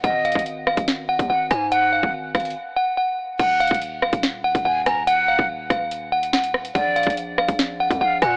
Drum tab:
CC |------------------------------------------------------------------------------------------------|------------------------------------------------------------------------------------------------|x-----------------------------------------------------------------------------------------------|------------------------------------------------------------------------------------------------|
HH |x-----------x---x---x---x-----------------x-----------------------x-----------------x-----------|x-----------------------------------x--x--x--x--------------------------------------------------|x-----------x---x---x---x-----------------x-----------------------x-----------------x-----------|x-----------------------------------x-----------x-----------------x-----------x-----------x-----|
SD |------------------------------------r-----------o-----------------------------------r-----------|------------------------------------r-----------------------------------------------------------|------------------------------------r-----------o-----------------------------------r-----------|------------------------------------r-----------------------------------o-----------r-----------|
BD |o-----------------o-----------------------o-----------------------o-----------------------------|------------------o-----------------o-----------------------------------------------------------|o-----------------o-----------------------o-----------------------o-----------------------------|------------------o-----------------o-----------------------------------------------------------|

CC |------------------------------------------------------------------------------------------------|
HH |x-----------x---x---x---x-----------------x-----------------------x-----------------x-----------|
SD |------------------------------------r-----------o-----------------------------------r-----------|
BD |o-----------------o-----------------------o-----------------------o-----------------------------|